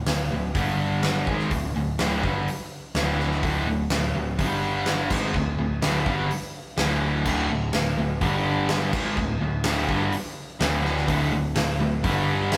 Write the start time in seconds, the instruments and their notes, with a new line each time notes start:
0.06 picked electric bass D1, distorted electric guitar D2 A2, snare, open hi-hat
0.31 picked electric bass D1, distorted electric guitar D2 A2
0.54 picked electric bass G1, distorted electric guitar G2 D3 G3, kick, open hi-hat
1.03 snare, open hi-hat
1.27 picked electric bass G#1, distorted electric guitar G#2 D#3 G#3, kick
1.39 snare
1.50 picked electric bass D1, distorted electric guitar D2 A2, kick, open hi-hat
1.75 picked electric bass D1, distorted electric guitar D2 A2
1.98 picked electric bass D1, distorted electric guitar D2 A2 D3, snare, open hi-hat
2.23 picked electric bass G1, distorted electric guitar G2 D3 G3, kick
2.48 open hi-hat
2.94 picked electric bass D1, distorted electric guitar D2 A2 D3, snare, open hi-hat
3.20 snare
3.31 snare
3.43 picked electric bass D1, distorted electric guitar D2 A2 D3, kick, open hi-hat
3.67 picked electric bass D1, distorted electric guitar D2 A2
3.90 picked electric bass D1, distorted electric guitar D2 A2, snare, open hi-hat
4.14 picked electric bass D1, distorted electric guitar D2 A2
4.38 picked electric bass G1, distorted electric guitar G2 D3 G3, kick, open hi-hat
4.86 snare, open hi-hat
5.10 picked electric bass G#1, distorted electric guitar G#2 D#3 G#3, kick, snare, crash
5.34 picked electric bass D1, distorted electric guitar D2 A2, kick
5.58 picked electric bass D1, distorted electric guitar D2 A2
5.82 picked electric bass D1, distorted electric guitar D2 A2 D3, snare, open hi-hat
6.05 picked electric bass G1, distorted electric guitar G2 D3 G3, kick
6.30 open hi-hat
6.77 picked electric bass D1, distorted electric guitar D2 A2 D3, snare, open hi-hat
7.24 picked electric bass D1, distorted electric guitar D2 A2 D3, kick, crash
7.48 picked electric bass D1, distorted electric guitar D2 A2
7.72 picked electric bass D1, distorted electric guitar D2 A2, snare, open hi-hat
7.96 picked electric bass D1, distorted electric guitar D2 A2
8.21 picked electric bass G1, distorted electric guitar G2 D3 G3, kick, open hi-hat
8.69 snare, open hi-hat
8.92 picked electric bass G#1, distorted electric guitar G#2 D#3 G#3, kick, snare, crash
9.17 picked electric bass D1, distorted electric guitar D2 A2, kick
9.41 picked electric bass D1, distorted electric guitar D2 A2
9.63 picked electric bass D1, distorted electric guitar D2 A2 D3, snare, open hi-hat
9.88 picked electric bass G1, distorted electric guitar G2 D3 G3, kick
10.12 open hi-hat
10.59 picked electric bass D1, distorted electric guitar D2 A2 D3, snare, open hi-hat
10.85 snare
10.97 snare
11.07 picked electric bass D1, distorted electric guitar D2 A2 D3, kick, open hi-hat
11.32 picked electric bass D1, distorted electric guitar D2 A2
11.56 picked electric bass D1, distorted electric guitar D2 A2, snare, open hi-hat
11.79 picked electric bass D1, distorted electric guitar D2 A2
12.04 picked electric bass G1, distorted electric guitar G2 D3 G3, kick, open hi-hat
12.52 snare, open hi-hat